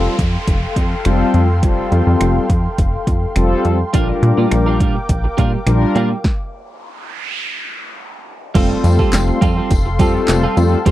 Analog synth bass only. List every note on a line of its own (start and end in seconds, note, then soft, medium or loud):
0.19 0.37 F2 loud
0.48 0.66 F1 loud
0.76 0.95 F2 loud
1.05 1.24 F1 loud
1.34 1.64 F2 loud
1.63 1.82 F1 loud
1.92 2.02 F2 loud
2.07 2.16 F2 medium
2.21 2.39 F1 loud
2.49 2.68 F2 medium
2.78 2.97 F1 loud
3.07 3.26 F2 loud
3.36 3.55 F1 loud
3.65 3.84 F2 medium
3.94 4.12 A#1 loud
4.22 4.32 A#2 medium
4.38 4.47 A#2 loud
4.51 4.82 A#1 loud
4.80 4.99 A#2 loud
5.09 5.28 A#1 loud
5.38 5.57 A#2 loud
5.67 5.85 A#1 loud
5.95 6.14 A#2 medium
8.55 8.74 F1 loud
8.84 9.03 F2 loud
9.13 9.32 F1 loud
9.42 9.60 F2 loud
9.71 10.01 F1 loud
9.99 10.18 F2 loud
10.28 10.47 F1 loud
10.57 10.76 F2 loud
10.86 10.91 F1 loud